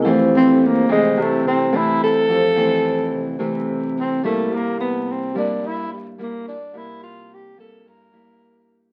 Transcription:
<<
  \new Staff \with { instrumentName = "Vibraphone" } { \time 4/4 \key f \major \tempo 4 = 108 <e' g' a' c''>1 | <e' g' a' c''>1 | r1 | r1 | }
  \new Staff \with { instrumentName = "Tenor saxophone" } { \time 4/4 \key f \major r8 c'8 bes8 aes8 a8 c'8 e'8 a'8~ | a'2 r4 c'8 a8 | bes8 b8 c'8 d'8 e'8 g8 bes8 d'8 | e'8 f'8 g'8 a'8 bes'4.~ bes'16 r16 | }
  \new Staff \with { instrumentName = "Nylon-string guitar" } { \time 4/4 \key f \major << { <e a c'>4. <e a c'>4. <e a c'>4~ | <e a c'>8 <e a c'>4. <e a c'>4. <g bes e'>8~ | <g bes e'>4. <g bes e'>4. <g bes e'>8 r8 | <g bes e'>4. <g bes e'>4 <g bes e'>4. | } \\ { f,2 c2 | f,2 c2 | c2 g,2 | c2 g,2 | } >> }
  \new Staff \with { instrumentName = "Fingered electric bass" } { \clef bass \time 4/4 \key f \major f,4. c,8 c,8 c,4. | f,4. c,8 c,8 c,4. | c,4. g,8 g,8 g,4. | c,4. g,8 g,8 g,4. | }
>>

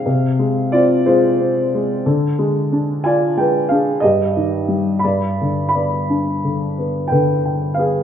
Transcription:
<<
  \new Staff \with { instrumentName = "Upright piano" } { \time 6/8 \key g \phrygian \tempo 4. = 60 <aes' f''>4 <f' d''>8 <f' c''>4 r8 | r4. <d'' aes''>8 <b' g''>8 <aes' f''>8 | <g' ees''>4. <d'' b''>4 <d'' b''>8~ | <d'' b''>4. <b' g''>4 <aes' f''>8 | }
  \new Staff \with { instrumentName = "Upright piano" } { \clef bass \time 6/8 \key g \phrygian c8 aes8 c'8 aes8 c'8 aes8 | d8 aes8 d'8 f'8 aes8 d'8 | g,8 ees8 g8 g,8 d8 b8 | d'8 d8 b8 d8 g''8 b8 | }
>>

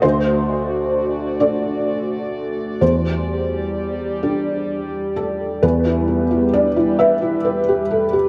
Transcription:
<<
  \new Staff \with { instrumentName = "Felt piano" } { \time 6/8 \key e \minor \tempo 4. = 43 << { c''4. d''4. | c''2~ c''8 a'8 | b'4 d''8 e''4. | } \\ { d,4. <d' a'>4. | e,4. <d' g'>4. | e,16 e'16 b16 e'16 d'16 e'16 b'16 e'16 b'16 g'16 a'16 g'16 | } >> }
  \new Staff \with { instrumentName = "Ambient pad" } { \time 6/8 \key e \minor << { d''2.~ | d''2. | b'2. | } \\ { <a fis'>2. | <g g'>2. | <g g'>2. | } >> }
>>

